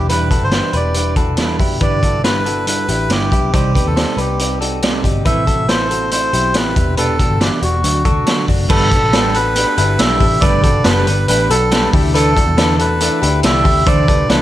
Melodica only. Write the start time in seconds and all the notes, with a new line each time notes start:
0.11 B4
0.44 C5
0.76 D5
1.82 D5
2.24 B4
2.68 B4
3.11 G4
3.54 G4
3.87 A4
4.20 G4
5.26 E5
5.69 C5
6.12 C5
6.55 B4
6.98 A4
7.41 G4
7.63 F#4
8.70 A4
9.35 B4
9.99 E5
10.41 D5
10.84 B4
11.28 B4
11.50 A4
12.15 A4
12.81 B4
13.45 E5
13.87 D5
14.30 B4